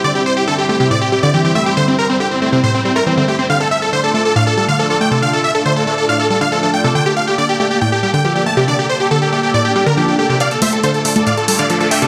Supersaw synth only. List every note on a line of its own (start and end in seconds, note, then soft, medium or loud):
0.04 0.11 D5 loud
0.15 0.22 G4 medium
0.26 0.33 C5 medium
0.37 0.44 G4 medium
0.47 0.55 A4 medium
0.58 0.65 G4 medium
0.69 0.76 G4 medium
0.80 0.87 G4 medium
0.91 0.98 D5 medium
1.01 1.09 G4 medium
1.12 1.19 G4 medium
1.23 1.30 D5 medium
1.34 1.41 G4 medium
1.45 1.52 G4 medium
1.55 1.62 E5 medium
1.66 1.73 G4 medium
1.77 1.84 C5 medium
1.88 1.95 C4 medium
1.99 2.06 A#4 medium
2.10 2.17 C4 medium
2.20 2.27 G4 medium
2.31 2.38 C4 medium
2.42 2.49 C4 medium
2.53 2.60 C4 medium
2.64 2.71 C5 medium
2.74 2.81 C4 medium
2.85 2.92 C4 medium
2.96 3.03 A#4 medium
3.07 3.14 C4 medium
3.17 3.24 C4 medium
3.28 3.35 G4 medium
3.39 3.46 C4 medium
3.50 3.57 F5 loud
3.60 3.68 A4 medium
3.71 3.78 E5 medium
3.82 3.89 A4 medium
3.93 4.00 C5 medium
4.04 4.11 A4 medium
4.15 4.22 A4 medium
4.25 4.32 A4 medium
4.36 4.43 F5 medium
4.47 4.54 A4 medium
4.57 4.65 A4 medium
4.68 4.75 F5 medium
4.79 4.86 A4 medium
4.90 4.97 A4 medium
5.01 5.08 G5 medium
5.12 5.19 A4 medium
5.22 5.29 F5 loud
5.33 5.40 A4 medium
5.44 5.51 E5 medium
5.55 5.62 A4 medium
5.66 5.73 C5 medium
5.76 5.83 A4 medium
5.87 5.94 A4 medium
5.98 6.05 A4 medium
6.09 6.16 F5 medium
6.20 6.27 A4 medium
6.30 6.37 A4 medium
6.41 6.48 F5 medium
6.52 6.59 A4 medium
6.63 6.70 A4 medium
6.74 6.81 G5 medium
6.84 6.91 A4 medium
6.95 7.02 G5 medium
7.06 7.13 G4 medium
7.17 7.24 F5 medium
7.27 7.34 G4 medium
7.38 7.45 D5 medium
7.49 7.56 G4 medium
7.60 7.67 G4 medium
7.71 7.78 G4 medium
7.81 7.88 G5 medium
7.92 7.99 G4 medium
8.03 8.10 G4 medium
8.14 8.21 G5 medium
8.25 8.32 G4 medium
8.35 8.42 G4 medium
8.46 8.53 A5 medium
8.57 8.64 G4 medium
8.68 8.75 D5 medium
8.79 8.86 G4 medium
8.89 8.96 C5 medium
9.00 9.07 G4 medium
9.11 9.18 A4 medium
9.22 9.29 G4 medium
9.33 9.40 G4 medium
9.43 9.50 G4 medium
9.54 9.61 D5 medium
9.65 9.72 G4 medium
9.76 9.83 G4 medium
9.86 9.93 A#4 medium
9.97 10.04 G4 medium
10.08 10.15 G4 medium
10.19 10.26 G4 medium
10.30 10.37 G4 medium
10.41 10.48 D5 medium
10.41 10.48 F5 medium
10.51 10.58 A4 medium
10.62 10.69 C5 medium
10.62 10.69 E5 medium
10.73 10.80 A4 medium
10.84 10.91 A4 medium
10.84 10.91 C5 medium
10.94 11.01 A4 medium
11.05 11.12 A4 medium
11.16 11.23 A4 medium
11.27 11.34 D5 medium
11.27 11.34 F5 medium
11.37 11.45 A4 medium
11.48 11.55 A4 medium
11.59 11.66 D5 medium
11.59 11.66 F5 medium
11.70 11.77 A4 medium
11.80 11.88 A4 medium
11.91 11.98 E5 medium
11.91 11.98 G5 medium
12.02 12.07 A4 medium